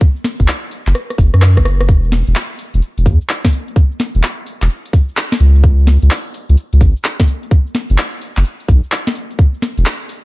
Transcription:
0.01 kick, closed hi-hat, cabasa
0.16 cabasa
0.24 snare, open hi-hat, cabasa
0.40 sub bass F#1, kick, closed hi-hat, cabasa
0.48 clap, cabasa
0.63 cabasa
0.71 open hi-hat, cabasa
0.87 sub bass F#1, clap, closed hi-hat, cabasa
0.95 cross-stick, closed hi-hat, cabasa
1.10 cross-stick, closed hi-hat, cabasa
1.18 sub bass F#1, kick, open hi-hat, cabasa
1.34 sub bass F#2, cross-stick, cabasa
1.42 cross-stick, clap, cabasa
1.57 sub bass F#1, kick, cross-stick, closed hi-hat, cabasa
1.65 cross-stick, open hi-hat, cabasa
1.81 cross-stick, closed hi-hat, cabasa
1.89 sub bass E1, kick, closed hi-hat, cabasa
2.04 cabasa
2.12 snare, open hi-hat, cabasa
2.27 sub bass E1, closed hi-hat, cabasa
2.35 clap, cabasa
2.51 cabasa
2.59 open hi-hat, cabasa
2.74 sub bass E1, closed hi-hat, cabasa
2.82 closed hi-hat, cabasa
2.98 sub bass E1, closed hi-hat, cabasa
3.06 sub bass E2, kick, open hi-hat, cabasa
3.21 cabasa
3.29 clap, cabasa
3.45 kick, snare, closed hi-hat, cabasa
3.53 open hi-hat, cabasa
3.68 closed hi-hat, cabasa
3.76 kick, closed hi-hat, cabasa
3.92 cabasa
4.00 snare, open hi-hat, cabasa
4.15 sub bass E1, closed hi-hat, cabasa
4.23 clap, cabasa
4.38 cabasa
4.46 open hi-hat, cabasa
4.62 sub bass E1, clap, closed hi-hat, cabasa
4.70 closed hi-hat, cabasa
4.86 closed hi-hat, cabasa
4.93 kick, open hi-hat, cabasa
5.09 cabasa
5.17 clap, cabasa
5.32 snare, closed hi-hat, cabasa
5.40 sub bass C#2, open hi-hat, cabasa
5.56 closed hi-hat, cabasa
5.64 kick, closed hi-hat, cabasa
5.79 cabasa
5.87 snare, open hi-hat, cabasa
6.02 sub bass C#2, closed hi-hat, cabasa
6.11 clap, cabasa
6.26 cabasa
6.34 open hi-hat, cabasa
6.49 sub bass C#2, closed hi-hat, cabasa
6.57 closed hi-hat, cabasa
6.73 sub bass C#2, closed hi-hat, cabasa
6.81 sub bass G#1, kick, open hi-hat, cabasa
6.96 cabasa
7.04 clap, cabasa
7.20 kick, snare, closed hi-hat, cabasa
7.28 open hi-hat, cabasa
7.43 closed hi-hat, cabasa
7.51 kick, closed hi-hat, cabasa
7.67 cabasa
7.75 snare, open hi-hat, cabasa
7.90 sub bass F#1, closed hi-hat, cabasa
7.98 clap, cabasa
8.13 cabasa
8.21 open hi-hat, cabasa
8.37 sub bass F#1, clap, closed hi-hat, cabasa
8.45 closed hi-hat, cabasa
8.60 closed hi-hat, cabasa
8.68 sub bass B1, kick, open hi-hat, cabasa
8.84 cabasa
8.92 clap, cabasa
9.07 snare, closed hi-hat, cabasa
9.15 open hi-hat, cabasa
9.31 closed hi-hat, cabasa
9.39 kick, closed hi-hat, cabasa
9.54 cabasa
9.62 snare, open hi-hat, cabasa
9.78 sub bass E1, closed hi-hat, cabasa
9.86 clap, cabasa
10.01 cabasa
10.09 open hi-hat, cabasa

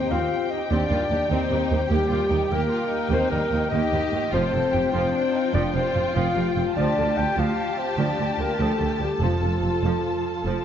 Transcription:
Already playing: viola section G4, violin section G5
0.10 double bass section D#2, cello section D#2, viola section C4, violin section C4, french horn section F4, clarinet F5
0.50 french horn section D#4, clarinet D#5
0.69 cello section D#2, double bass section D#2, viola section C4, french horn section D4, violin section G4, clarinet D5
0.88 double bass section D#2, cello section D#2, viola section G3, violin section F4
1.09 double bass section D#2, cello section D#2, viola section D#3, violin section G4
1.28 cello section D#2, double bass section D#2, french horn section C4, viola section C4, violin section D#4, clarinet C5
1.50 cello section D#2, double bass section D#2, viola section G3
1.69 double bass section D#2, cello section D#2, viola section D#3, french horn section C4, clarinet C5
1.89 double bass section D#2, cello section D#2, french horn section G3, viola section A#3, violin section G4, clarinet G4
2.09 double bass section D#2, cello section D#2, viola section G3, violin section F4
2.29 double bass section D#2, cello section D#2, viola section D#3, violin section D#4
2.49 double bass section D#2, cello section D#2, french horn section A#3, viola section A#3, violin section G4, clarinet A#4
2.70 violin section F4
2.89 violin section D#4
3.10 cello section D#2, double bass section D#2, viola section A#3, french horn section C4, clarinet C5
3.30 cello section D#2, double bass section D#2, viola section G3, french horn section A#3, clarinet A#4
3.52 cello section D#2, double bass section D#2, viola section D#3
3.70 cello section D#2, double bass section D#2, viola section A#3, french horn section D#4, violin section G4, clarinet D#5
3.92 cello section D#2, double bass section D#2, viola section G3
4.12 cello section D#2, double bass section D#2, viola section D#3
4.31 double bass section F1, cello section F2, viola section F3 F4, french horn section C4, violin section F4 G5, clarinet C5
4.50 double bass section F1, cello section F2, viola section C3, violin section A4
4.72 double bass section F1, cello section F2, viola section C3, violin section G4
4.92 double bass section F1, cello section F2, viola section F3, french horn section C4, violin section F4, clarinet C5
5.13 violin section D4
5.34 violin section D#4
5.53 double bass section F1, cello section F2, viola section F3, french horn section D4, violin section F4, clarinet D5
5.73 double bass section F1, cello section F2, viola section C3, french horn section C4, clarinet C5
5.95 double bass section F1, cello section F2, viola section C3
6.14 double bass section F1, cello section F2, viola section F3, french horn section F4, clarinet F5
6.36 double bass section F1, cello section F2, viola section C3
6.57 double bass section F1, cello section F2, viola section C3
6.75 cello section D2, double bass section D2, viola section F3, french horn section D4, violin section G4 A5, clarinet D5
6.97 cello section D2, double bass section D2, viola section D3
7.17 cello section D2, double bass section D2, viola section D3, french horn section G4, clarinet G5
7.37 double bass section D2, cello section D2, viola section F3, french horn section F4, clarinet F5
7.76 french horn section C4, clarinet C5
7.97 cello section D2, double bass section D2, viola section F3, french horn section D4, clarinet D5
8.18 cello section D2, double bass section D2, viola section D3
8.39 double bass section D2, cello section D2, viola section D3, french horn section A#3, clarinet A#4
8.59 cello section D2, double bass section D2, viola section F3, french horn section A3, clarinet A4
8.79 double bass section D2, cello section D2, viola section D3
8.99 double bass section D2, cello section D2, viola section D3, french horn section G3, clarinet G4
9.19 double bass section F1, timpani F2, cello section F2, viola section F3 F4, french horn section F3, clarinet F4, violin section A4
9.41 double bass section F1, cello section F2, viola section C3
9.61 double bass section F1, cello section F2, viola section C3
9.82 double bass section F1, cello section F2, viola section F3
10.45 double bass section F1, cello section F2, viola section F3

